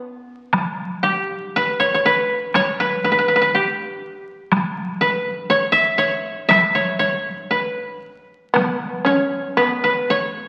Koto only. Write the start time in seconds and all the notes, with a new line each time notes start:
Already playing: E4 F#4 G4
1.03 G4
1.56 B4
1.80 C#5
1.94 C#5
2.06 B4
2.55 C#5
2.80 B4
3.04 B4
3.12 B4
3.19 B4
3.28 B4
3.36 B4
3.42 B4
3.55 G4
5.01 B4
5.50 C#5
5.72 E5
5.98 C#5
6.49 E5
6.75 C#5
6.99 C#5
7.51 B4
9.06 C#5
9.57 B4
9.84 B4
10.10 C#5